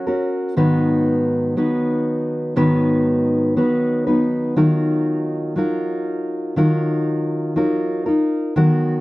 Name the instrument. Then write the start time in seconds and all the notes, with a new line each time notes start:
steel-string acoustic guitar
0.07 C#4 F#4 A#4
0.56 G#2 D#3 F#3 B3 D#4 B4
1.57 F#3 B3 D#4 B4
2.56 G#2 D#3 F#3 B3 D#4 B4
3.56 F#3 B3 D#4 B4
4.07 F#3 B3 D#4 B4
4.56 D#3 F#3 D#4 F4 A#4
5.56 F#3 D#4 F4 A#4
6.56 D#3 F#3 D#4 F4 A#4
7.56 F#3 D#4 F4 A#4
8.06 D#4 F4 A#4
8.56 D#3 F#3 B3 F#4 A#4